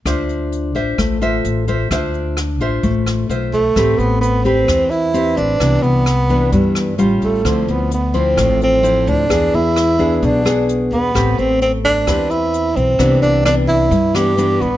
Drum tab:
HH |xxxxxxxx|xxxxxxxx|xxxxxxxx|xxxxxxxx|
SD |r---r---|r-r--r--|r---r---|r-r--r--|
BD |o--oo--o|o--oo--o|o--oo--o|o--oo--o|

HH |xxxxxxxx|xxxxxxxx|xxxxxxxx|xxxxxxxx|
SD |r---r---|r-r--r--|r---r---|r-r--r--|
BD |o--oo--o|o--oo--o|o--oo--o|o--oo--o|